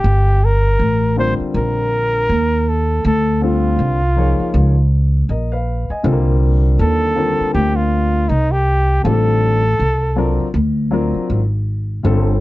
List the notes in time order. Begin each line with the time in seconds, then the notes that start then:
Already playing: G4
0.04 G1
0.45 A#4
0.79 A1
1.16 D3 G3 C4 F4 A#4 C5
1.40 muted upright bass stroke
1.54 A#1 A#4
2.29 D#2
2.69 A4
3.05 D2 A4
3.41 D3 G3 C4 F4 A4
3.79 C2
4.16 F3 A#3 D#4 G#4 C#5
4.40 muted upright bass stroke
4.54 C#2
5.29 A#1 A#4 D#5
5.52 B4 F5
5.90 D#5 G#5, muted upright bass stroke
6.03 C2 D3 G3 C4 F4 A4
6.12 A#3
6.79 D#2 A4
7.15 D3 G3 A#3 C4 F4
7.40 muted upright bass stroke
7.54 D2 G4
7.76 F4
8.29 C2 D#4
8.52 G4
9.03 A1 D3 G3 C4 F4 G4 A4
9.12 A4
9.79 C2
10.16 F#3 C4 D4 F4 A#4
10.40 muted upright bass stroke
10.54 D2
10.91 F#3 C4 D4 F4 A#4
11.15 muted upright bass stroke
11.30 G#1
12.03 G1 D3 G3 C4 F4 A4